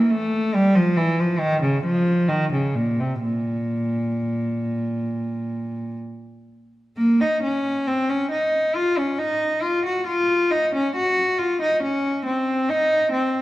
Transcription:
0.00 0.10 A#3 medium
0.11 0.54 A3 medium
0.54 0.75 G3 medium
0.76 0.97 F3 medium
0.97 1.19 E3 medium
1.20 1.41 F3 medium
1.39 1.62 D#3 medium
1.62 1.84 C#3 medium
1.83 2.28 F3 medium
2.28 2.51 D#3 medium
2.53 2.75 C#3 medium
2.75 2.98 A#2 medium
3.00 3.22 C3 medium
3.21 5.97 A#2 medium
6.97 7.19 A#3 medium
7.21 7.43 D#4 medium
7.43 7.86 C#4 medium
7.87 8.09 C4 medium
8.09 8.31 C#4 medium
8.31 8.74 D#4 medium
8.75 8.97 F4 medium
8.98 9.19 C#4 medium
9.19 9.63 D#4 medium
9.62 9.84 F4 medium
9.86 10.07 F#4 medium
10.07 10.50 F4 medium
10.51 10.73 D#4 medium
10.75 10.95 C#4 medium
10.96 11.38 F#4 medium
11.39 11.60 F4 medium
11.62 11.82 D#4 medium
11.83 12.25 C#4 medium
12.25 12.68 C4 medium
12.69 13.12 D#4 medium
13.12 13.42 C4 medium

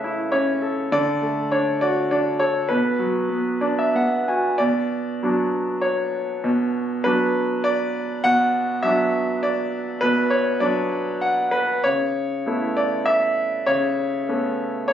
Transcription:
0.00 0.88 C#3 medium
0.00 0.59 A3 soft
0.00 0.33 C#4 soft
0.00 0.04 E4 soft
0.00 0.62 A4 soft
0.00 0.94 B4 medium
0.00 0.32 C#5 medium
0.00 0.35 E5 medium
0.04 0.90 E4 soft
0.32 0.91 C#4 soft
0.32 0.94 C#5 medium
0.62 0.91 A4 soft
0.92 2.66 D3 medium
0.92 1.53 D5 medium
1.22 2.37 A3 soft
1.52 2.10 D4 soft
1.52 1.79 C#5 medium
1.81 2.68 F#4 soft
1.81 2.09 D5 medium
2.11 2.68 D4 soft
2.11 2.41 D5 medium
2.39 2.69 A4 soft
2.39 2.70 C#5 medium
2.69 4.56 B2 medium
2.69 3.91 B4 medium
2.99 4.24 F#3 soft
3.30 3.94 B3 soft
3.61 4.56 D4 soft
3.61 3.77 D5 soft
3.79 3.94 E5 medium
3.95 4.58 B3 soft
3.95 4.26 F#5 medium
4.28 4.59 F#4 soft
4.28 4.58 G#5 soft
4.58 6.40 B2 medium
4.58 5.78 D5 medium
5.23 7.02 F#3 soft
5.23 7.02 B3 soft
5.23 7.02 D4 soft
5.81 7.08 C#5 medium
6.44 8.21 B2 medium
7.04 8.80 F#3 soft
7.04 8.80 B3 soft
7.04 8.80 D4 soft
7.04 7.67 B4 medium
7.64 8.20 D5 medium
8.24 9.98 B2 medium
8.24 8.85 F#5 loud
8.83 10.57 F#3 soft
8.83 10.58 B3 soft
8.83 10.58 D4 soft
8.83 9.44 E5 medium
9.43 10.04 D5 medium
10.01 11.81 B2 medium
10.01 10.29 B4 medium
10.30 10.62 C#5 medium
10.60 11.81 F#3 soft
10.60 11.81 B3 soft
10.60 11.81 D4 soft
10.60 11.24 D5 medium
11.21 11.54 F#5 medium
11.51 11.81 B4 medium
11.84 13.64 C#3 medium
11.84 12.79 C#5 medium
12.46 14.24 A3 soft
12.46 14.24 B3 soft
12.46 14.24 E4 soft
12.77 13.08 D5 medium
13.06 13.63 E5 medium
13.66 14.93 C#3 medium
13.66 14.86 C#5 medium
14.28 14.93 A3 soft
14.28 14.93 B3 soft
14.28 14.93 C#4 soft
14.88 14.93 C#5 medium

